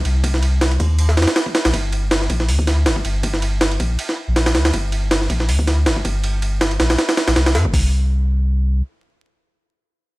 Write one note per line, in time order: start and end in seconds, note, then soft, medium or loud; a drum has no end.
0.05 0.78 C2 loud
0.05 ride medium
0.24 kick loud
0.24 ride medium
0.34 snare soft
0.42 ride medium
0.61 snare loud
0.61 ride medium
0.71 ride soft
0.80 1.19 D#2 medium
0.80 kick medium
0.80 ride medium
0.99 ride medium
1.09 snare medium
1.17 1.27 F2 medium
1.17 snare medium
1.17 ride medium
1.22 snare medium
1.22 ride medium
1.28 snare loud
1.28 ride medium
1.36 snare loud
1.36 ride medium
1.46 kick medium
1.55 snare loud
1.55 ride medium
1.65 1.73 A#1 loud
1.65 snare loud
1.65 ride medium
1.74 2.28 G1 medium
1.74 kick loud
1.74 ride medium
1.92 ride medium
2.11 snare loud
2.11 ride medium
2.21 snare soft
2.30 2.50 A#1 medium
2.30 kick medium
2.30 ride medium
2.40 snare soft
2.48 2.87 D2 medium
2.48 open hi-hat medium
2.59 kick medium
2.67 snare medium
2.67 ride medium
2.86 3.03 G1 medium
2.86 snare loud
2.86 ride medium
2.96 kick medium
3.05 3.78 G1 loud
3.05 ride medium
3.23 kick loud
3.23 ride medium
3.34 snare soft
3.42 ride medium
3.61 snare loud
3.61 ride medium
3.71 ride soft
3.80 3.97 A#1 medium
3.80 kick medium
3.80 ride medium
3.99 ride medium
4.09 snare medium
4.28 4.56 A#1 medium
4.36 snare loud
4.36 ride medium
4.46 snare loud
4.46 ride medium
4.55 4.72 D2 medium
4.55 snare loud
4.55 ride medium
4.65 snare loud
4.65 ride medium
4.74 5.28 G1 loud
4.74 kick loud
4.74 ride medium
4.92 ride medium
5.11 snare loud
5.11 ride medium
5.21 snare soft
5.30 5.50 A#1 medium
5.30 kick loud
5.30 ride medium
5.40 snare soft
5.49 5.88 D2 medium
5.49 open hi-hat medium
5.59 kick medium
5.67 snare medium
5.67 ride medium
5.86 6.03 G1 loud
5.86 snare loud
5.86 ride medium
5.96 kick medium
6.05 6.78 G1 loud
6.05 kick loud
6.05 ride medium
6.24 ride medium
6.42 ride medium
6.61 snare loud
6.61 ride medium
6.71 ride soft
6.80 6.97 A#1 medium
6.80 snare loud
6.80 ride medium
6.90 snare loud
6.90 ride medium
6.99 snare loud
6.99 ride medium
7.09 snare loud
7.09 ride medium
7.17 snare loud
7.17 ride medium
7.27 7.35 A#1 medium
7.27 snare loud
7.27 ride medium
7.36 7.56 C2 medium
7.36 snare loud
7.36 ride medium
7.46 snare loud
7.46 ride medium
7.55 7.67 G2 medium
7.55 snare loud
7.55 ride medium
7.65 7.73 D1 loud
7.65 kick medium
7.74 8.82 C2 medium
7.74 kick loud
7.74 open hi-hat medium